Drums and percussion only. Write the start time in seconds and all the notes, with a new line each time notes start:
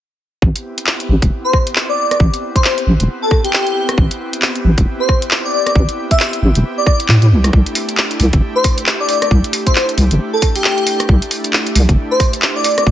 0.42 kick
0.56 closed hi-hat
0.78 closed hi-hat
0.87 clap
1.00 closed hi-hat
1.22 kick, closed hi-hat
1.53 kick, cross-stick
1.67 closed hi-hat
1.76 clap
2.11 cross-stick, closed hi-hat
2.20 kick
2.34 closed hi-hat
2.56 kick, closed hi-hat
2.64 clap
2.78 closed hi-hat
3.00 closed hi-hat
3.31 kick, cross-stick
3.44 closed hi-hat
3.53 clap
3.67 closed hi-hat
3.89 cross-stick, closed hi-hat
3.98 kick
4.11 closed hi-hat
4.33 closed hi-hat
4.42 clap
4.55 closed hi-hat
4.78 kick, closed hi-hat
5.09 kick, cross-stick
5.22 closed hi-hat
5.31 clap
5.67 cross-stick, closed hi-hat
5.75 kick
5.89 closed hi-hat
6.11 kick, closed hi-hat
6.20 clap
6.33 closed hi-hat
6.55 closed hi-hat
6.86 kick, cross-stick
7.00 closed hi-hat
7.09 clap
7.22 closed hi-hat
7.44 cross-stick, closed hi-hat
7.53 kick
7.66 closed hi-hat
7.75 open hi-hat
7.89 closed hi-hat
7.98 clap
8.11 closed hi-hat
8.20 open hi-hat
8.33 kick, closed hi-hat
8.64 kick, cross-stick, open hi-hat
8.78 closed hi-hat
8.86 clap
9.09 open hi-hat
9.22 cross-stick, closed hi-hat
9.31 kick
9.44 closed hi-hat
9.53 open hi-hat
9.67 kick, closed hi-hat
9.76 clap
9.89 closed hi-hat
9.98 open hi-hat
10.11 closed hi-hat
10.42 kick, cross-stick, open hi-hat
10.56 open hi-hat
10.64 clap
10.78 closed hi-hat
10.87 open hi-hat
11.00 cross-stick, closed hi-hat
11.09 kick
11.22 closed hi-hat
11.31 open hi-hat
11.44 closed hi-hat
11.53 clap
11.67 closed hi-hat
11.75 open hi-hat
11.89 kick, closed hi-hat
12.20 kick, cross-stick, open hi-hat
12.33 closed hi-hat
12.42 clap
12.64 open hi-hat
12.78 cross-stick, closed hi-hat
12.87 kick